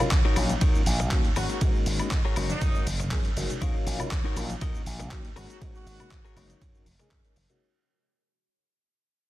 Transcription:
0.00 A#3 C#4 D#4 F4, shaker
0.11 D#2, kick, clap, closed hi-hat, ride, shaker
0.25 D#4 F#4 A#4 C#5, shaker
0.36 A#1 F#3 A#3 C#4 D#4 F4, open hi-hat, high woodblock, shaker
0.49 closed hi-hat, high conga, shaker
0.61 D#2 D#4 F#4 A#4 C#5, kick, closed hi-hat, ride, shaker
0.75 F#3 A#3 C#4 D#4 F4, shaker
0.86 A#1, open hi-hat, shaker
1.00 muted clean electric guitar stroke, closed hi-hat, low conga, shaker
1.11 D#2 F#3 A#3 C#4 D#4 F#4, muted clean electric guitar stroke, kick, clap, closed hi-hat, ride, shaker
1.25 closed hi-hat, shaker
1.36 G#1 G#3 A#3 C#4 D#4 F#4 G#4 A#4 C#5, open hi-hat, high conga, high woodblock, shaker
1.50 F#4, closed hi-hat, shaker
1.61 G#2 G#3 A#3 C#4 D#4 F#4, kick, closed hi-hat, ride, shaker
1.75 shaker
1.86 G#1, muted clean electric guitar stroke, open hi-hat, shaker
2.00 G#3 A#3 C#4 D#4 F#4, muted slap bass stroke, closed hi-hat, high woodblock, shaker
2.11 G#2, kick, clap, closed hi-hat, ride, shaker
2.25 F#4 G#4 A#4 C#5, shaker
2.36 F#1 G#3 A#3 C#4 D#4 F#4 A#4 C#5, open hi-hat, high woodblock, shaker
2.50 D#4, closed hi-hat, high conga, shaker
2.61 F#2, kick, closed hi-hat, ride, shaker
2.75 G#3 A#3 C#4 D#4 F#4, shaker
2.87 F#1, open hi-hat, high conga, shaker
3.00 muted clean electric guitar stroke, closed hi-hat, low conga, shaker
3.11 F#2 G#3 A#3 C#4 D#4 G#4, muted clean electric guitar stroke, kick, clap, open hi-hat, ride, shaker
3.25 closed hi-hat, shaker
3.36 F#1 G#3 A#3 C#4 D#4 F#4, open hi-hat, high conga, shaker
3.50 closed hi-hat, low conga, shaker
3.61 D#2 F#3 A#3 C#4 D#4 F#4 A#4 C#5 F5, kick, closed hi-hat, ride, shaker
3.75 shaker
3.86 A#1, muted clean electric guitar stroke, open hi-hat, shaker
3.99 F#3 A#3 C#4 D#4 F4, muted slap bass stroke, closed hi-hat, low conga, high woodblock, shaker
4.11 D#2, kick, clap, closed hi-hat, ride, shaker
4.25 D#4 F#4 A#4 C#5, shaker
4.36 A#1 F#3 A#3 C#4 D#4 F4, open hi-hat, high woodblock, shaker
4.50 closed hi-hat, high conga, shaker
4.61 D#2 D#4 F#4 A#4 D#5, kick, closed hi-hat, ride, shaker
4.74 F#3 A#3 C#4 D#4 F4, shaker
4.86 A#1, open hi-hat, shaker
5.00 muted clean electric guitar stroke, closed hi-hat, low conga, shaker
5.11 D#2 F#3 A#3 C#4 D#4 F#4, muted clean electric guitar stroke, kick, clap, closed hi-hat, ride, shaker
5.25 closed hi-hat, shaker
5.36 G#1 G#3 A#3 C#4 D#4 F#4 G#4 A#4 C#5, open hi-hat, high conga, high woodblock, shaker
5.50 F#4, closed hi-hat, shaker
5.61 G#2 G#3 A#3 C#4 D#4 F#4, kick, closed hi-hat, ride, shaker
5.75 F#4, shaker
5.86 G#1, muted clean electric guitar stroke, open hi-hat, shaker
5.99 G#3 A#3 C#4 D#4 F#4, muted slap bass stroke, closed hi-hat, low conga, high woodblock, shaker
6.11 G#2, kick, clap, closed hi-hat, ride, shaker
6.25 F#4 G#4 A#4 C#5, shaker
6.36 F#1 G#3 A#3 C#4 D#4 F#4 A#4 C#5, open hi-hat, high woodblock, shaker
6.50 closed hi-hat, high conga, shaker
6.61 F#2, kick, closed hi-hat, ride, shaker
6.74 G#3 A#3 C#4 D#4 F#4, shaker
6.86 F#1, open hi-hat, high conga, shaker
6.99 G#3 A#3 C#4 D#4 G#4, muted clean electric guitar stroke, closed hi-hat, low conga, shaker
7.11 F#2, muted clean electric guitar stroke, kick, clap, open hi-hat, ride, shaker
7.25 G#3 A#3 C#4 D#4 A#4, closed hi-hat, shaker
7.36 F#1, open hi-hat, high conga, shaker
7.49 G#3 A#3 C#4 D#4 F#4, closed hi-hat, low conga, shaker

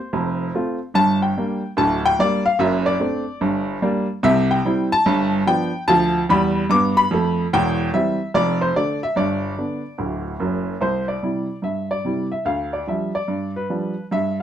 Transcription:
Already playing: C5
0.13 F1 F2
0.55 A3 C4 F4
0.94 G1 G2 A5
1.22 G5
1.37 G3 A#3 D4
1.77 D1 D2 A5
2.06 G5
2.19 G3 A#3 D4 D5
2.46 F5
2.59 F#1 F#2 E5
2.86 D5
3.00 A3 C4 D4
3.41 G1 G2
3.82 G3 A#3 D4
4.23 C2 C3 E5
4.51 G5
4.65 G3 C4 E4
4.92 A5
5.06 G1 G2
5.47 F3 B3 D4 G5
5.88 D2 F3 A5
6.29 E2 G3 B5
6.69 G2 B3 D6
6.97 B5
7.11 F2 A3
7.53 E1 E2 G5
7.94 E3 G3 C4 E5
8.34 F1 F2 D5
8.61 C5
8.75 D3 A3 D4 D5
9.03 E5
9.16 G1 G2 D5
9.58 D3 B3 D4
9.98 D1 D2
10.40 F#1 F#2
10.81 C2 C5
11.08 D5
11.23 C3 G3 E4
11.62 G2 E5
11.91 D5
12.05 C3 G3 E4
12.32 E5
12.45 D2 F5
12.73 D5
12.87 F3 G3 D4 E5
13.15 D5
13.28 G2
13.56 B4
13.70 F3 G3 D4
14.11 G2 E5

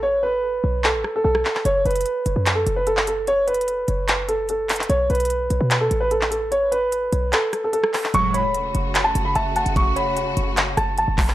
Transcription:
Already playing: A1
0.03 C#5
0.23 B4
0.64 B1
0.84 A4, clap
0.94 A1
1.04 cross-stick
1.16 A4
1.24 B1 A4
1.35 cross-stick
1.45 clap
1.55 clap
1.65 F#1 C#5, closed hi-hat
1.85 F#1 B4, closed hi-hat
1.91 closed hi-hat
1.96 closed hi-hat
2.01 closed hi-hat
2.06 closed hi-hat
2.26 F#1, closed hi-hat
2.36 F#2
2.46 clap, closed hi-hat
2.55 A4
2.67 F#1, closed hi-hat
2.76 B4
2.87 A4, closed hi-hat
2.97 clap
3.07 A4, closed hi-hat
3.27 C#5, closed hi-hat
3.48 B4, closed hi-hat
3.54 closed hi-hat
3.61 closed hi-hat
3.68 closed hi-hat
3.88 F#1, closed hi-hat
4.08 clap, closed hi-hat
4.29 A4, closed hi-hat
4.49 A4, closed hi-hat
4.69 clap, closed hi-hat, open hi-hat
4.76 clap, closed hi-hat
4.83 closed hi-hat
4.89 B1 C#5, closed hi-hat
5.10 B1 B4, closed hi-hat
5.15 closed hi-hat
5.20 closed hi-hat
5.25 closed hi-hat
5.30 closed hi-hat
5.50 B1, closed hi-hat
5.61 B2
5.71 clap, closed hi-hat
5.81 A4
5.91 A1, closed hi-hat
6.00 B4
6.11 A4, closed hi-hat
6.21 clap
6.31 A4, closed hi-hat
6.52 C#5, closed hi-hat
6.72 B4, closed hi-hat
6.92 closed hi-hat
7.12 B1, closed hi-hat
7.33 A4, clap, closed hi-hat
7.53 cross-stick, closed hi-hat
7.64 A4
7.73 A4, closed hi-hat
7.84 cross-stick
7.94 clap, open hi-hat
8.04 clap
8.14 F#1 C#2 A2 C#3 F#3 A3 F#4 C#6, closed hi-hat
8.34 C#5 B5, closed hi-hat
8.44 E1
8.54 closed hi-hat
8.75 F#1, closed hi-hat
8.95 clap, closed hi-hat
9.04 A5
9.15 F#1, closed hi-hat
9.25 B5
9.35 F#1 E5 A5, closed hi-hat
9.56 F#5 A5, closed hi-hat
9.66 F#1, closed hi-hat
9.76 C#6, kick, closed hi-hat
9.96 C#5 B5, closed hi-hat
10.17 closed hi-hat
10.37 F#1, closed hi-hat
10.57 clap, closed hi-hat
10.77 F#1 A5, cross-stick, closed hi-hat
10.98 G1 A5, closed hi-hat
11.08 F#1
11.18 kick, clap, open hi-hat
11.28 clap

